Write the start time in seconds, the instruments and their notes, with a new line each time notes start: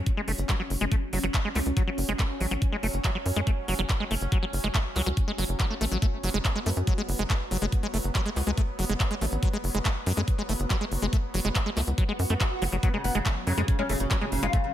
Already playing: synth texture F#3 C#4
0.06 kick, closed hi-hat
0.17 acid bass G#3
0.28 analog synth bass F#1, acid bass A3, open hi-hat
0.38 analog synth bass F#1, closed hi-hat
0.49 acid bass F#3, kick, clap, closed hi-hat
0.60 acid bass F#3
0.70 analog synth bass F#1, open hi-hat
0.81 analog synth bass F#1, acid bass G#3, closed hi-hat
0.92 acid bass A3, kick, closed hi-hat
1.13 analog synth bass F#1, acid bass F#3, open hi-hat
1.23 analog synth bass F#1, acid bass F#3, closed hi-hat
1.34 kick, clap, closed hi-hat
1.45 acid bass G#3
1.55 analog synth bass C#2, acid bass A3, clap, open hi-hat
1.66 analog synth bass C#2, closed hi-hat
1.77 acid bass F#3, kick, closed hi-hat
1.87 acid bass F#3
1.98 analog synth bass F#1, open hi-hat
2.09 analog synth bass F#1, acid bass G#3, closed hi-hat
2.19 acid bass A3, kick, clap, closed hi-hat
2.40 analog synth bass A1, acid bass F#3, open hi-hat
2.51 analog synth bass A1, acid bass F#3, closed hi-hat
2.62 kick, closed hi-hat
2.72 acid bass G#3
2.83 analog synth bass F#1, acid bass A3, open hi-hat
2.94 analog synth bass F#1, closed hi-hat
3.04 acid bass F#3, kick, clap, closed hi-hat
3.15 acid bass F#3
3.26 analog synth bass F#2, open hi-hat
3.36 analog synth bass F#2, acid bass G#3, closed hi-hat
3.47 acid bass A3, kick, closed hi-hat
3.68 analog synth bass F#1, acid bass F#3, open hi-hat
3.79 analog synth bass F#1, acid bass F#3, closed hi-hat
3.89 kick, clap, closed hi-hat
4.00 acid bass G#3
4.11 analog synth bass F#1, acid bass A3, open hi-hat
4.21 analog synth bass F#1, closed hi-hat
4.32 acid bass F#3, kick, closed hi-hat
4.43 acid bass F#3
4.53 analog synth bass F#1, open hi-hat
4.64 analog synth bass F#1, acid bass G#3, closed hi-hat
4.74 acid bass A3, kick, clap, closed hi-hat
4.96 analog synth bass C#2, acid bass F#3, clap, open hi-hat
5.06 analog synth bass C#2, acid bass F#3, closed hi-hat
5.17 kick, closed hi-hat
5.28 acid bass G#3
5.38 analog synth bass F#1, acid bass F#3, open hi-hat
5.49 analog synth bass F#1, closed hi-hat
5.60 acid bass F#3, kick, clap, closed hi-hat
5.70 acid bass A3
5.81 analog synth bass A1, acid bass A3, open hi-hat
5.92 analog synth bass A1, acid bass F#3, closed hi-hat
6.02 acid bass A3, synth texture B3, kick, closed hi-hat
6.23 analog synth bass F#1, acid bass F#3, open hi-hat
6.34 analog synth bass F#1, acid bass G#3, closed hi-hat
6.45 kick, clap, closed hi-hat
6.55 acid bass G#3
6.66 analog synth bass F#2, acid bass A3, open hi-hat
6.77 analog synth bass F#2, closed hi-hat
6.87 acid bass F#3, kick, closed hi-hat
6.98 acid bass G#3
7.09 analog synth bass F#1, open hi-hat
7.19 analog synth bass F#1, acid bass G#3, closed hi-hat
7.30 acid bass A3, kick, clap, closed hi-hat
7.51 analog synth bass F#1, acid bass F#3, open hi-hat
7.62 analog synth bass F#1, acid bass G#3, closed hi-hat
7.72 kick, closed hi-hat
7.83 acid bass G#3
7.94 analog synth bass F#1, acid bass A3, open hi-hat
8.04 analog synth bass F#1, closed hi-hat
8.15 acid bass F#3, kick, clap, closed hi-hat
8.26 acid bass G#3
8.36 analog synth bass C#2, clap, open hi-hat
8.47 analog synth bass C#2, acid bass G#3, closed hi-hat
8.57 acid bass A3, kick, closed hi-hat
8.79 analog synth bass F#1, acid bass F#3, open hi-hat
8.89 analog synth bass F#1, acid bass G#3, closed hi-hat
9.00 kick, clap, closed hi-hat
9.11 acid bass G#3
9.21 analog synth bass A1, acid bass A3, open hi-hat
9.32 analog synth bass A1, closed hi-hat
9.43 acid bass F#3, kick, closed hi-hat
9.53 acid bass G#3
9.64 analog synth bass F#1, open hi-hat
9.75 analog synth bass F#1, acid bass G#3, closed hi-hat
9.85 acid bass A3, kick, clap, closed hi-hat
10.06 analog synth bass F#2, acid bass F#3, open hi-hat
10.17 analog synth bass F#2, acid bass G#3, closed hi-hat
10.28 kick, closed hi-hat
10.38 acid bass G#3
10.49 analog synth bass F#1, acid bass A3, open hi-hat
10.60 analog synth bass F#1, closed hi-hat
10.70 acid bass F#3, kick, clap, closed hi-hat
10.81 acid bass G#3
10.92 analog synth bass F#1, open hi-hat
11.02 analog synth bass F#1, acid bass G#3, closed hi-hat
11.13 acid bass A3, kick, closed hi-hat
11.34 analog synth bass F#1, acid bass F#3, open hi-hat
11.45 analog synth bass F#1, acid bass G#3, closed hi-hat
11.55 kick, clap, closed hi-hat
11.66 acid bass G#3
11.77 analog synth bass C#2, acid bass A3, clap, open hi-hat
11.87 analog synth bass C#2, closed hi-hat
11.98 acid bass F#3, kick, closed hi-hat, swell
12.09 acid bass G#3
12.19 analog synth bass F#2, open hi-hat
12.30 analog synth bass F#2, acid bass A3, closed hi-hat
12.40 acid bass F#4, kick, clap, closed hi-hat
12.62 analog synth bass F#1, acid bass F#3, open hi-hat
12.72 analog synth bass F#1, acid bass F#3, closed hi-hat
12.83 acid bass F#3, synth texture F#3 C#4, oud B3, kick, closed hi-hat
12.94 oud C#3, acid bass G#3
13.04 analog synth bass F#1, oud B3, open hi-hat
13.15 analog synth bass F#1, oud C#3, acid bass G#3, closed hi-hat
13.26 oud C#3, acid bass A3, kick, clap, closed hi-hat
13.47 analog synth bass F#2, oud C#3, acid bass F#3, open hi-hat
13.57 analog synth bass F#2, oud C#3, acid bass G#3, closed hi-hat
13.68 oud C#3, kick, closed hi-hat
13.79 acid bass G#3, oud C#4
13.89 analog synth bass F#1, oud C#3, acid bass A3, open hi-hat
14.00 analog synth bass F#1, oud C#3, closed hi-hat
14.11 acid bass F#3, kick, clap, closed hi-hat
14.21 oud C#3, acid bass G#3
14.32 analog synth bass F#1, oud C#3, open hi-hat
14.43 analog synth bass F#1, acid bass G#3, oud F4, closed hi-hat
14.53 oud C#3, acid bass A3, kick, closed hi-hat
14.64 oud C#3